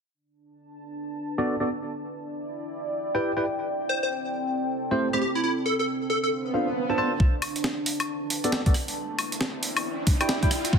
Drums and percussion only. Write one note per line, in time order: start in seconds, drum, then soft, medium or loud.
7.20 kick loud
7.42 open hi-hat loud
7.42 high woodblock medium
7.56 closed hi-hat medium
7.64 snare loud
7.86 open hi-hat loud
8.00 closed hi-hat medium
8.00 high woodblock medium
8.30 open hi-hat loud
8.44 closed hi-hat medium
8.52 snare loud
8.66 kick loud
8.66 closed hi-hat soft
8.74 cross-stick medium
8.74 open hi-hat loud
8.88 open hi-hat medium
9.19 open hi-hat loud
9.19 high woodblock medium
9.32 closed hi-hat medium
9.41 snare loud
9.63 open hi-hat loud
9.77 open hi-hat medium
9.77 high woodblock medium
10.07 kick loud
10.07 open hi-hat loud
10.21 closed hi-hat medium
10.21 high woodblock medium
10.29 snare loud
10.43 kick loud
10.43 closed hi-hat soft
10.51 cross-stick medium
10.51 open hi-hat loud
10.65 closed hi-hat medium
10.73 kick loud